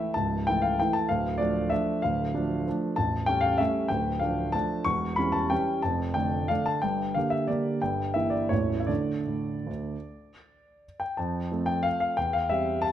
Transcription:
grand piano
Already playing: E3 A3 E4 E5
0.14 C#1 C#2 A5
0.47 E3 A3 E4 G5
0.62 F5
0.80 E3 A3 E4 G5
0.93 A5
1.09 D1 D2 F5
1.38 F3 A3 D4 D5
1.70 F3 A3 D4 E5
2.02 D1 D2 F5
2.34 F3 A3 D4
2.67 F3 A3 D4
2.96 A0 A1 A5
3.26 G3 A3 C#4 G5
3.41 F5
3.58 G3 A3 C#4 E5
3.88 D1 D2 G5
4.19 F3 A3 D4 F5
4.52 F3 A3 D4 A5
4.85 E1 E2 C#6
5.16 E3 G3 C#4 B5
5.32 A5
5.50 E3 G3 C#4 G5
5.82 F1 F2 A5
6.14 D3 A3 D4 G5
6.48 D3 A3 D4 F5
6.66 A5
6.82 G1 G2 G5
7.14 D3 A#3 G4 F5
7.30 E5
7.48 D3 A#3 G4 D5
7.82 G1 G2 G5
8.14 E3 A#3 E4 E5
8.30 D5
8.49 A0 A1 E3 A3 E4 C#5
8.80 E5
8.87 D3 A3 D4 D5
9.27 A2
9.67 D2
11.00 G5
11.17 F2 A5
11.52 F3 A3 C4
11.66 G5
11.83 F5
12.00 F5
12.17 E2 G5
12.33 F5
12.50 G3 C4 E5
12.82 A5

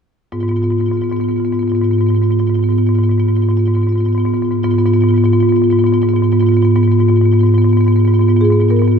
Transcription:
marimba
0.32 G#2 B3 F4
0.40 G#2 B3 F4
0.48 B3 F4
0.52 G#2
0.56 B3 F4
0.62 G#2 B3 F4
0.70 G#2 B3 F4
0.78 G#2 B3 F4
0.86 B3 F4
0.91 G#2 F4
0.97 B3
1.01 G#2 B3 F4
1.10 G#2 B3 F4
1.16 F4
1.21 G#2 B3 F4
1.28 G#2 B3 F4
1.36 B3 F4
1.41 G#2
1.45 B3 F4
1.52 G#2 B3 F4
1.59 G#2 B3 F4
1.68 B3 F4
1.72 G#2 B3
1.76 F4
1.81 G#2 B3 F4
1.91 G#2 B3 F4
1.99 G#2 B3 F4
2.07 B3 F4
2.11 G#2 B3
2.16 F4
2.21 G#2 B3 F4
2.31 G#2 B3 F4
2.39 G#2 B3 F4
2.47 G#2 B3 F4
2.54 B3 F4
2.59 G#2 F4
2.64 B3
2.69 G#2 B3 F4
2.78 G#2 B3 F4
2.86 G#2 B3 F4
2.95 B3 F4
2.99 G#2
3.03 B3 F4
3.09 G#2 B3 F4
3.18 G#2 B3 F4
3.28 G#2 B3 F4
3.35 G#2 B3 F4
3.42 B3 F4
3.48 G#2 B3 F4
3.57 G#2 B3 F4
3.65 G#2 B3 F4
3.74 G#2 B3 F4
3.82 B3 F4
3.87 G#2 F4
3.92 G#2 B3
3.98 B3 F4
4.05 G#2 B3 F4
4.13 G#2 F4
4.18 B3 F4
4.25 G#2 B3 F4
4.33 G#2 B3 F4
4.42 G#2 B3 F4
4.51 G#2 B3 F4
4.63 G#2 B3 F4
4.71 G#2 B3 F4
4.79 B3 F4
4.86 G#2 B3 F4
4.94 G#2 B3 F4
5.01 G#2 B3 F4
5.09 B3 F4
5.14 G#2 B3 F4
5.24 G#2 B3 F4
5.33 G#2 B3 F4
5.40 G#2 B3 F4
5.49 B3 F4
5.53 G#2 F4
5.57 B3
5.62 G#2 B3 F4
5.70 G#2 B3 F4
5.79 B3 F4
5.84 G#2 B3 F4
5.93 G#2 B3 F4
6.02 G#2 B3 F4
6.09 B3 F4
6.13 G#2 B3 F4
6.23 G#2 B3 F4
6.32 G#2 B3 F4
6.40 G#2 B3 F4
6.47 B3 F4
6.53 G#2 F4
6.57 B3
6.62 G#2 B3 F4
6.76 G#2 B3 F4
6.83 B3 F4
6.87 G#2
6.92 B3 F4
6.99 G#2 B3 F4
7.08 G#2 B3 F4
7.16 B3 F4
7.21 G#2 F4
7.26 B3
7.32 G#2 B3 F4
7.39 B3 F4
7.43 G#2 F4
7.49 B3
7.54 G#2 B3 F4
7.62 G#2 B3 F4
7.70 B3 F4
7.77 G#2 B3 F4
7.85 G#2 B3 F4
7.92 B3 F4
7.97 G#2 F4
8.05 G#2 B3 F4
8.14 B3 F4
8.19 G#2 B3 F4
8.28 G#2 B3 F4
8.36 G#2 B3 F4
8.41 B3 F4 G#4
8.50 G#2 B3 F4
8.60 G#2 B3 F4
8.68 G#2 B3 F4 A#4
8.76 B3 F4
8.82 G#2 F4
8.88 B3 F4

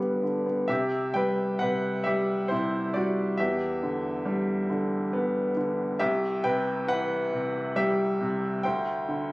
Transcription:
grand piano
Already playing: G2 D3 G3 G4
0.00 B3
0.23 D3
0.46 B3
0.68 C3 G4 E5
1.14 G3 B4 G5
1.59 C3 B4 F#5
2.04 G3 G4 E5
2.48 C3 E4 C5
2.94 G3 F#4 D5
3.38 E2 G4 E5
3.83 D3
4.25 G3
4.69 D3
5.13 B3
5.57 D3
5.99 C2 G4 E5
6.44 C3 B4 G5
6.87 E3 B4 F#5
7.33 C3
7.76 G3 G4 E5
8.21 C3
8.63 D2 C5 G5
9.09 D3

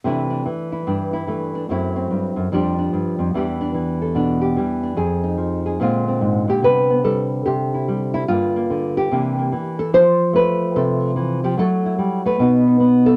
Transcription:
nylon-string guitar
0.04 C3 E3 A3 D4 E4
0.30 D4
0.46 E3
0.72 E4
0.87 G2 D4
1.13 E4
1.27 E3 A3
1.55 D4
1.69 F#2 F#3 A3 C4 E4
1.96 C4
2.11 G2
2.36 F#2
2.52 F2 F3 G3 D4 G4
2.79 D4
2.93 G2
3.19 F2
3.34 E2 E3 G3 D4 G4
3.61 D4
3.74 E3
4.02 A4
4.15 B2 D4
4.41 G4
4.56 E3 G3
4.83 D4
4.96 F2 G#4
5.24 D#4
5.37 F3
5.66 G#4
5.80 A#2 D3 G#3 C4 F4
6.08 C4
6.21 G#2
6.48 A#2 G4
6.62 C3 G3 B3 B4
6.90 B3
7.04 G3 A4
7.46 C3 G4
7.74 E4
7.88 G3
8.14 E4
8.28 G2 D3 A#3 F4
8.56 A#3
8.70 D3
8.97 G4
9.11 C3 E3 A#3 D4
9.38 A#3
9.52 E3
9.79 A4
9.93 F3 C5
10.33 A3 B4
10.76 C3 A4
11.16 E3
11.44 F3 G4
11.57 F#3 A3 E4 A4
11.86 E4
11.98 G3
12.26 A3 B4
12.39 B2 B3 D#4 F#4
12.67 D#4
12.80 B3
13.06 A4

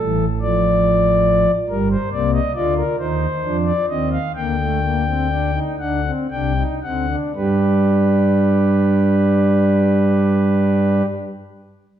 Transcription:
pipe organ
Already playing: A4
0.00 A1 A2 E3
0.41 F3 D5
1.70 G1 G2 G3 A#4
1.91 C5
2.12 C2 C3 A#3 D5
2.33 D#5
2.55 D2 D3 F4 D5
2.77 A#4
2.99 D#2 D#3 D#4 C5
3.43 F2 F3 D4
3.66 D5
3.89 D#2 D#3 C4 D#5
4.12 F5
4.35 D2 D3 A#3 G5
4.59 A3
4.82 A#3
5.07 C4
5.30 D4
5.55 D#4
5.79 D2 D3 D4 F#5
6.05 C4
6.30 C2 C3 D4 G5
6.58 D#4
6.83 D2 D3 C4 F#5
7.09 D4
7.35 G2 G3 D4 G4 B4

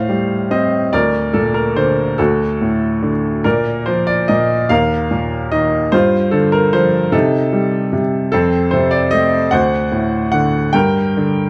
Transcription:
grand piano
Already playing: A2 C5 F5
0.09 G3
0.51 C4 D#5
0.93 D2 A#4 D5
1.33 A#2 A4
1.54 A#4
1.76 D3 C5
2.18 D2 F#4 A4
2.61 A2
3.02 D3
3.44 A#2 A#4 D5
3.86 F3 C5
4.07 D5
4.28 A#2 D#5
4.69 D#2 A#4 F5
5.11 A#2
5.52 D#3 D#5
5.92 G2 F4 C5
6.31 D3 A4
6.52 A#4
6.73 F3 C5
7.12 C3 D#4 A4
7.53 G3
7.93 C3
8.32 F2 C4 A4
8.71 C3 C5
8.91 D5
9.11 A3 D#5
9.51 D2 C5 F#5
9.92 A2
10.32 D3 F#5
10.73 G2 A#4 G5
11.17 D3

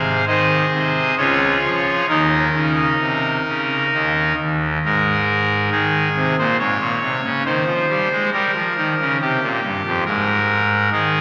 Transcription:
pipe organ
Already playing: C3 G#4 C5 F5
0.27 D#3 G#4 C5 D#5
0.73 C3
1.18 C#2 C#3 F4 G#4 C#5
1.64 F3
2.09 D#2 D#3 D#4 A#4
2.54 C#3
3.00 C3
3.48 C#3
3.94 D#2 D#3
4.40 D#2
4.85 G#2 A#4
5.71 D#3 G#4
6.16 C3
6.38 A#2 C5
6.59 G#2 C#5
6.80 A#2
7.02 C3
7.24 C#3
7.45 D#3 C5
7.66 F3
7.90 G3
8.11 G#3
8.33 G3 A#4
8.54 F3
8.77 D#3
9.00 C#3
9.21 C3 G4
9.42 A#2
9.63 G2
9.86 F2
10.05 G#2 A#4
10.92 D#3 G#4

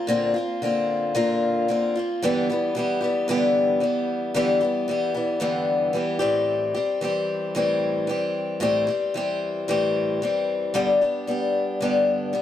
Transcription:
steel-string acoustic guitar
0.07 A#2 D3 A#3 C4 F4
0.34 C4 F4
0.38 A#3
0.62 D3 A#3 C4 F4
1.15 A#2 D3 A#3 C4 F4
1.68 D3 A#3 C4 F4
1.95 A#3 C4 F4
2.22 G2 D3 E3 G3 B3 G4
2.50 E3 G3 B3 G4
2.75 E3 G3 B3 G4
3.01 E3 G3 B3 G4
3.28 G2 D3 E3 G3 B3 G4
3.80 E3 G3 B3 G4
4.34 G2 D3 E3 G3 B3 G4
4.61 E3 G3 B3 G4
4.88 E3 G3 B3 G4
5.14 E3 G3 B3 G4
5.40 G2 D3 E3 G3 B3 G4
5.93 E3 G3 B3 G4
6.19 A2 E3 G3 C4 G4
6.75 G3 C4 G4
7.01 E3 G3 C4 G4
7.55 A2 E3 G3 C4 G4
8.07 E3 G3 C4 G4
8.60 A2 E3 G3 C4 G4
8.87 G3 C4 G4
9.14 E3 G3 C4 G4
9.68 A2 E3 G3 C4 G4
10.22 E3 G3 C4 G4
10.74 G2 D3 G3 B3 D4 G4
11.01 G3 B3 D4 G4
11.27 G3 B3 D4 G4
11.81 G2 D3 G3 B3 D4 G4
12.33 G3 B3 D4 G4

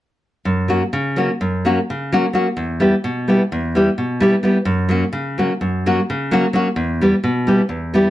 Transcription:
nylon-string guitar
0.45 F#2
0.68 F#3 A#3 C#4 F#4
0.93 C#3
1.16 F#3 A#3 C#4 F#4
1.41 F#2
1.65 F#3 A#3 C#4 F#4
1.90 C#3
2.12 F#3 A#3 C#4 F#4
2.33 F#3 A#3 C#4 F#4
2.57 E2
2.80 G3 B3 E4 G4
3.04 B2
3.28 G3 B3 E4 G4
3.52 E2
3.75 G3 B3 E4 G4
3.98 B2
4.20 G3 B3 E4 G4
4.43 G3 B3 E4 G4
4.65 F#2
4.89 F#3 A#3 C#4 F#4
5.13 C#3
5.38 F#3 A#3 C#4 F#4
5.61 F#2
5.86 F#3 A#3 C#4 F#4
6.10 C#3
6.31 F#3 A#3 C#4 F#4
6.53 F#3 A#3 C#4 F#4
6.76 E2
7.01 G3 B3 E4 G4
7.24 B2
7.47 G3 B3 E4 G4
7.69 E2
7.94 G3 B3 E4 G4

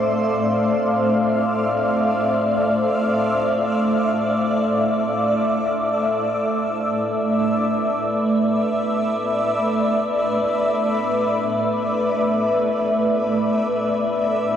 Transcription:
ambient pad
Already playing: A3 A4 C5 D5 E5 F5
5.73 A3
6.46 B4

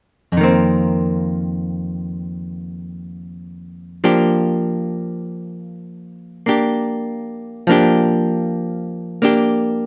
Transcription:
hollow-body jazz guitar
0.32 F2
0.37 D#3 A#3
0.43 C4
4.04 F3 A#3 D4 G4
6.46 A#3 D4 G4
7.67 F3 A#3 D4
7.72 G4
9.22 A#3 D4 G4

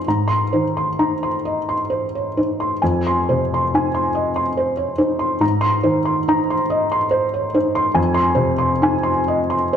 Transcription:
felt piano
0.08 G#2 A#5
0.28 C6
0.53 D#3 C5
0.77 C6
0.99 D#4 A#5
1.23 C6
1.45 D#5
1.69 C6
1.90 C5
2.15 C#5
2.37 D#4 C5
2.60 C6
2.82 F2 G#5
3.07 C6
3.29 C3 C5
3.54 C6
3.74 D#4 G#5
3.94 C6
4.15 D#5
4.36 C6
4.57 C5
4.77 C#5
4.98 D#4 C5
5.19 C6
5.40 G#2 A#5
5.61 C6
5.83 D#3 C5
6.05 C6
6.28 D#4 A#5
6.50 C6
6.70 D#5
6.92 C6
7.11 C5
7.34 C#5
7.54 D#4 C5
7.75 C6
7.94 F2 G#5
8.14 C6
8.35 C3 C5
8.58 C6
8.82 D#4 G#5
9.03 C6
9.28 D#5
9.50 C6
9.73 C5

